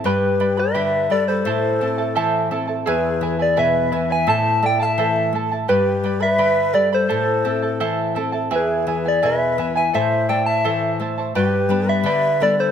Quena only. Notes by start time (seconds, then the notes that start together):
0.05 G4
0.58 B4
1.10 A4
1.28 A4
2.87 G#4
3.40 G#4
3.57 B4
4.11 E5
4.29 E5
4.64 D5
4.81 F5
4.85 E5
5.68 G4
6.21 B4
6.74 A4
6.92 A4
8.54 G#4
9.05 G#4
9.24 B4
9.76 E5
9.93 C5
10.29 D5
10.46 E5
11.36 G4
11.88 B4
12.42 A4
12.59 A4